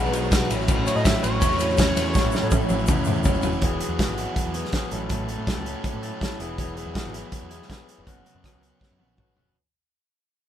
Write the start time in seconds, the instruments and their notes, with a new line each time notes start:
Already playing: picked electric bass B1, overdriven electric guitar E3 F#3 B3 F#4, clean electric guitar G#3 B3 F#4, analog synth lead B4
0.13 overdriven electric guitar F#3, clean electric guitar B3 F#4, ride, shaker
0.24 shaker
0.31 clean electric guitar G#3 B3 F#4, overdriven electric guitar F#4, kick, snare, ride, shaker
0.50 picked electric bass A1, overdriven electric guitar A2, clean electric guitar F#3 C#4 E4, ride, shaker
0.68 overdriven electric guitar A2, clean electric guitar F#3 C#4 E4, kick, ride, shaker
0.78 picked electric bass A1
0.87 clean electric guitar C#4 E4, analog synth lead C#5, ride, shaker
0.96 picked electric bass A2, analog synth lead D#5, shaker
1.04 overdriven electric guitar A2, clean electric guitar F#3 C#4 E4, analog synth lead E5, kick, snare, ride, shaker
1.22 picked electric bass A1, overdriven electric guitar F#3, clean electric guitar C#4 E4, analog synth lead C#5, ride, shaker
1.40 picked electric bass E2, clean electric guitar F#3 C#4 E4, overdriven electric guitar C#4, kick, ride, shaker
1.52 shaker
1.59 overdriven electric guitar A2, clean electric guitar C#4 E4, ride, shaker
1.70 shaker
1.77 clean electric guitar F#3 C#4 E4, overdriven electric guitar C#4, kick, snare, ride, shaker
1.96 picked electric bass E2, overdriven electric guitar E4, snare, ride, shaker
2.05 shaker
2.14 overdriven electric guitar A2, clean electric guitar F#3 C#4 E4, kick, snare, shaker
2.23 picked electric bass A1, shaker
2.31 clean electric guitar E4, snare, shaker
2.36 clean electric guitar C#4
2.42 picked electric bass A2, shaker
2.51 overdriven electric guitar A2, clean electric guitar F#3 C#4 E4, kick, high tom, shaker
2.61 shaker
2.69 picked electric bass A1, overdriven electric guitar F#3, clean electric guitar C#4 E4, high tom, shaker
2.87 picked electric bass E2, clean electric guitar F#3 C#4 E4, overdriven electric guitar C#4, kick, mid tom, shaker
3.04 overdriven electric guitar A2, clean electric guitar E4, mid tom, shaker
3.09 clean electric guitar C#4
3.14 shaker
3.24 picked electric bass F#1, clean electric guitar F#3 C#4 E4, overdriven electric guitar C#4, kick, floor tom, shaker
3.42 picked electric bass E1, overdriven electric guitar E4, floor tom, shaker
3.62 picked electric bass E1, overdriven electric guitar E3, clean electric guitar F#3 B3 F#4 G#4, kick, closed hi-hat
3.80 overdriven electric guitar F#3, clean electric guitar B3 F#4 G#4, closed hi-hat
3.89 picked electric bass E2
3.99 clean electric guitar F#3 B3 F#4 G#4, overdriven electric guitar F#3, kick, snare, closed hi-hat
4.08 picked electric bass G#1
4.18 overdriven electric guitar E4, closed hi-hat
4.36 overdriven electric guitar F#3, kick, closed hi-hat
4.46 picked electric bass E2
4.53 overdriven electric guitar B3, clean electric guitar B3 F#4 G#4, closed hi-hat
4.65 snare
4.72 clean electric guitar F#3 B3 F#4 G#4, overdriven electric guitar G#4, kick, snare, closed hi-hat
4.91 picked electric bass A1, overdriven electric guitar A2, clean electric guitar F#3 C#4 E4 A4, closed hi-hat
5.09 overdriven electric guitar A2, clean electric guitar F#3 C#4 E4 A4, kick, closed hi-hat
5.28 overdriven electric guitar F#3, clean electric guitar C#4 E4 A4, closed hi-hat
5.38 picked electric bass A2
5.47 overdriven electric guitar A2, clean electric guitar F#3 C#4 E4 A4, kick, snare, closed hi-hat
5.57 picked electric bass C#2
5.65 overdriven electric guitar C#4, closed hi-hat
5.83 overdriven electric guitar A2, kick, closed hi-hat
5.94 picked electric bass A2
6.03 overdriven electric guitar F#3, clean electric guitar C#4 E4 A4, closed hi-hat
6.21 clean electric guitar F#3 C#4 E4 A4, overdriven electric guitar E4, kick, snare, closed hi-hat
6.40 picked electric bass E1, overdriven electric guitar E3, clean electric guitar F#3 B3 E4 G#4, closed hi-hat
6.57 overdriven electric guitar E3, clean electric guitar F#3 B3 E4 G#4, kick, closed hi-hat
6.75 overdriven electric guitar F#3, clean electric guitar B3 E4 G#4, closed hi-hat
6.86 picked electric bass E2
6.94 clean electric guitar F#3 B3 E4 G#4, overdriven electric guitar F#3, kick, snare, closed hi-hat
7.05 picked electric bass G#1
7.14 overdriven electric guitar E4, closed hi-hat
7.32 overdriven electric guitar F#3, kick, closed hi-hat
7.42 picked electric bass E2
7.50 overdriven electric guitar B3, clean electric guitar B3 E4 G#4, closed hi-hat
7.62 snare
7.67 clean electric guitar F#3 B3 E4 G#4, overdriven electric guitar G#4, kick, snare, closed hi-hat
7.88 overdriven electric guitar B3, clean electric guitar B3 E4 G#4, closed hi-hat
7.98 picked electric bass F1
8.05 picked electric bass F#1, overdriven electric guitar F#2, clean electric guitar F#3 B3 C#4 F#4, kick, closed hi-hat
8.25 overdriven electric guitar C#3, clean electric guitar B3 C#4 F#4, closed hi-hat
8.35 picked electric bass F#2
8.43 clean electric guitar F#3 B3 C#4 F#4, overdriven electric guitar F#3, kick, cross-stick, closed hi-hat
8.54 picked electric bass C#2
8.62 overdriven electric guitar C#4, closed hi-hat
8.80 overdriven electric guitar F#3, kick, snare
8.91 picked electric bass F#2
8.99 picked electric bass A#1, overdriven electric guitar B3, clean electric guitar B3 C#4 F#4, high tom
9.18 picked electric bass G#1, clean electric guitar F#3 B3 C#4 F#4, overdriven electric guitar F#4, kick, mid tom
9.36 picked electric bass F#1, overdriven electric guitar B3, clean electric guitar B3 C#4 F#4, floor tom